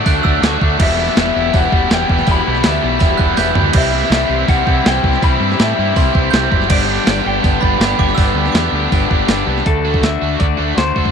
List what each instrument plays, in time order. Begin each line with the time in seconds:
Already playing: analog synth pad A4 D5 A5 D6, clean electric guitar D5
0.04 fingered electric bass D2, overdriven electric guitar D3 A3 D4 F#4, distorted electric guitar F#3, glockenspiel F#6, kick, open hi-hat
0.22 fingered electric bass D2, overdriven electric guitar D3 A3 D4 F#4, distorted electric guitar F#3, glockenspiel E6, kick
0.41 fingered electric bass D2, overdriven electric guitar D3 A3 D4 F#4, distorted electric guitar F#3, glockenspiel D6, snare, open hi-hat
0.59 fingered electric bass D2, overdriven electric guitar D3 A3 D4 F#4, distorted electric guitar F#3, kick
0.77 fingered electric bass E1, overdriven electric guitar E2 B2 E3 G3 B3 E4, analog synth pad G4 E5, distorted electric guitar G4, kick, crash
0.82 clean electric guitar E5
0.96 overdriven electric guitar E2 B2 E3 G3 B3 E4, distorted electric guitar G4
1.08 snare
1.15 fingered electric bass E1, overdriven electric guitar E2 B2 E3 G3 B3 E4, distorted electric guitar G4, clean electric guitar E5, snare, open hi-hat
1.34 fingered electric bass E1, overdriven electric guitar E2 B2 E3 G3 B3 E4, distorted electric guitar G4
1.52 fingered electric bass E1, overdriven electric guitar E2 B2 E3 G3 B3 E4, distorted electric guitar G4, kick, open hi-hat
1.57 clean electric guitar F#5
1.70 fingered electric bass E1, overdriven electric guitar E2 B2 E3 G3 B3 E4, distorted electric guitar G4, kick
1.88 fingered electric bass E1, overdriven electric guitar E2 B2 E3 G3 B3 E4, distorted electric guitar G4, snare, open hi-hat
1.94 clean electric guitar G5
2.07 fingered electric bass E1, overdriven electric guitar E2 B2 E3 G3 B3 E4, distorted electric guitar G4, kick
2.19 snare
2.26 fingered electric bass E1, overdriven electric guitar E2 B2 E3 G3 B3 E4, distorted electric guitar G4, kick, open hi-hat
2.31 clean electric guitar B5
2.45 fingered electric bass B1, overdriven electric guitar E2 B2 E3 G3 B3 E4, distorted electric guitar G4
2.55 snare
2.63 fingered electric bass D2, overdriven electric guitar E2 B2 E3 G3 B3 E4, distorted electric guitar G4, snare, open hi-hat
2.69 clean electric guitar E5
2.80 fingered electric bass B1, overdriven electric guitar E2 B2 E3 G3 B3 E4, distorted electric guitar G4
2.99 fingered electric bass E1, overdriven electric guitar E2 B2 E3 G3 B3 E4, distorted electric guitar G4, glockenspiel B5, kick, open hi-hat
3.17 fingered electric bass E1, overdriven electric guitar E2 B2 E3 G3 B3 E4, distorted electric guitar G4, glockenspiel F#6, kick
3.35 fingered electric bass E1, overdriven electric guitar E2 B2 E3 G3 B3 E4, distorted electric guitar G4, glockenspiel G6, snare, open hi-hat
3.54 fingered electric bass D2, overdriven electric guitar E2 B2 E3 G3 B3 E4, distorted electric guitar G4, floor tom
3.72 fingered electric bass C2, overdriven electric guitar C3 E3 G3 C4 E4, analog synth pad C5, kick, crash
3.76 distorted electric guitar G4, analog synth pad E5, clean electric guitar E5
3.92 overdriven electric guitar C3 E3 G3 C4 E4, distorted electric guitar G4
4.03 snare
4.10 fingered electric bass C2, overdriven electric guitar C3 E3 G3 C4 E4, distorted electric guitar G4, snare, open hi-hat
4.14 clean electric guitar E5
4.28 fingered electric bass C2, overdriven electric guitar C3 E3 G3 C4 E4, distorted electric guitar G4
4.46 fingered electric bass C2, overdriven electric guitar C3 E3 G3 C4 E4, distorted electric guitar G4, clean electric guitar F#5, kick, open hi-hat
4.64 fingered electric bass C2, overdriven electric guitar C3 E3 G3 C4 E4, kick
4.68 distorted electric guitar G4
4.83 fingered electric bass C2, overdriven electric guitar C3 E3 G3 C4 E4, distorted electric guitar G4, snare, open hi-hat
4.87 clean electric guitar G5
5.03 fingered electric bass C2, overdriven electric guitar C3 E3 G3 C4 E4, distorted electric guitar G4, kick
5.13 snare
5.21 fingered electric bass C2, overdriven electric guitar C3 E3 G3 C4 E4, distorted electric guitar G4, clean electric guitar B5, kick, open hi-hat
5.39 fingered electric bass G2, overdriven electric guitar C3 E3 G3 C4 E4, distorted electric guitar G4
5.52 snare
5.57 fingered electric bass A2, overdriven electric guitar C3 E3 G3 C4 E4, distorted electric guitar G4, snare, open hi-hat
5.61 clean electric guitar E5
5.76 fingered electric bass G2, overdriven electric guitar C3 E3 G3 C4 E4, distorted electric guitar G4
5.94 fingered electric bass C2, overdriven electric guitar C3 E3 G3 C4 E4, glockenspiel C6, kick, open hi-hat
5.99 distorted electric guitar G4
6.13 fingered electric bass C2, overdriven electric guitar C3 E3 G3 C4 E4, distorted electric guitar G4, kick
6.31 fingered electric bass C2, overdriven electric guitar C3 E3 G3 C4 E4, glockenspiel G6, snare, open hi-hat
6.35 distorted electric guitar G4
6.50 fingered electric bass F#1, overdriven electric guitar C3 E3 G3 C4 E4, distorted electric guitar G4, kick
6.62 snare
6.68 fingered electric bass G1, overdriven electric guitar G2 D3 G3 B3 D4 G4, analog synth pad B4 D5, kick, crash
6.72 clean electric guitar D5
6.86 overdriven electric guitar G2 D3 G3 B3 D4 G4
7.04 fingered electric bass G1, overdriven electric guitar G2 D3 G3 B3 D4 G4, snare, open hi-hat
7.10 clean electric guitar D5
7.22 fingered electric bass G1, overdriven electric guitar G2 D3 G3 B3 D4 G4
7.27 clean electric guitar G5
7.40 overdriven electric guitar G2 D3 G3 B3 D4 G4, kick, open hi-hat
7.44 fingered electric bass G1
7.59 fingered electric bass G1, overdriven electric guitar G2 D3 G3 B3 D4 G4, glockenspiel B5, kick
7.78 fingered electric bass G1, overdriven electric guitar G2 D3 G3 B3 D4 G4, snare, open hi-hat
7.97 fingered electric bass G1, overdriven electric guitar G2 D3 G3 B3 D4 G4, glockenspiel D6, kick
8.09 snare
8.15 fingered electric bass G1, overdriven electric guitar G2 D3 G3 B3 D4 G4, glockenspiel E6, kick, open hi-hat
8.34 fingered electric bass D2, overdriven electric guitar G2 D3 G3 B3 D4 G4
8.46 snare
8.52 fingered electric bass E2, overdriven electric guitar G2 D3 G3 B3 D4, glockenspiel D6, snare, open hi-hat
8.56 overdriven electric guitar G4
8.72 fingered electric bass D2, overdriven electric guitar G2 D3 G3 B3 D4 G4
8.90 fingered electric bass G1, overdriven electric guitar G2 D3 G3 B3 D4 G4, kick, open hi-hat
9.07 fingered electric bass G1, overdriven electric guitar G2 D3 G3 B3 D4 G4, kick
9.27 fingered electric bass G1, overdriven electric guitar G2 D3 G3 B3 D4 G4, snare, open hi-hat
9.45 fingered electric bass C2, overdriven electric guitar G2 D3 G3 B3 D4 G4
9.58 snare
9.64 fingered electric bass D2, overdriven electric guitar D3 A3 D4 F#4, clean electric guitar A4, kick, open hi-hat
9.82 overdriven electric guitar A3 D4 F#4
9.94 kick
10.01 fingered electric bass D2, overdriven electric guitar D3 A3 D4 F#4, clean electric guitar E5, snare, open hi-hat
10.21 fingered electric bass D2, distorted electric guitar A3 D4 F#4
10.38 fingered electric bass D2, overdriven electric guitar D3 A3 D4 F#4, clean electric guitar D5, kick, open hi-hat
10.58 fingered electric bass D2, overdriven electric guitar A3 D4 F#4
10.76 fingered electric bass D2, overdriven electric guitar D3 A3 D4 F#4, clean electric guitar C5, snare, open hi-hat
10.95 fingered electric bass D2, overdriven electric guitar A3 D4 F#4, kick
11.05 kick